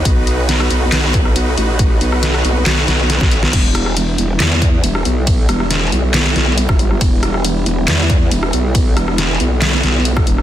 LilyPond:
<<
  \new Staff \with { instrumentName = "Supersaw synth" } { \time 4/4 \key e \minor \tempo 4 = 138 <dis' fis' b'>1~ | <dis' fis' b'>1 | <g b e'>1~ | <g b e'>1~ |
<g b e'>1~ | <g b e'>1 | }
  \new Staff \with { instrumentName = "Wobble bass" } { \clef bass \time 4/4 \key e \minor b,,4. b,,8 b,,4 b,,8 a,,8~ | a,,8 b,,4 b,,8 b,,8 b,,8. b,,8. | e,,4. e,,8 e,4 e,,8 b,,8~ | b,,8 e,,4 b,,4 b,,8. g,,8. |
e,,4. e,,8 e,4 e,,8 b,,8~ | b,,8 e,,4 b,,4 b,,4 e,,8 | }
  \new DrumStaff \with { instrumentName = "Drums" } \drummode { \time 4/4 <hh bd>8 hh8 <hh sn>16 ss16 hh8 <hc hh sn>16 ss16 <hh bd>16 ss16 hh8 hh8 | <hh bd>8 hh16 ss16 <hh sn>16 ss16 hh8 <hc hh sn>8 <hh sn>8 <hh sn>16 <bd sn>16 hh16 sn16 | <cymc hh bd cymr>8 <hh ss>16 ss16 <hh cymr>8 hh8 <hc hh cymr sn>8 <hh bd>8 <hh cymr>16 ss16 hh8 | <hh bd cymr>8 <hh ss>16 ss16 <hh cymr sn>8 hh8 <hc hh cymr sn>8 <hh sn>8 <hh cymr>16 <bd ss>16 hh16 ss16 |
<hh bd cymr>8 <hh ss>16 ss16 <hh cymr>8 hh8 <hc hh cymr sn>8 <hh bd>8 <hh cymr>16 ss16 hh8 | <hh bd cymr>8 <hh ss>16 ss16 <hh cymr sn>8 hh8 <hc hh cymr sn>8 <hh sn>8 <hh cymr>16 <bd ss>16 hh16 ss16 | }
>>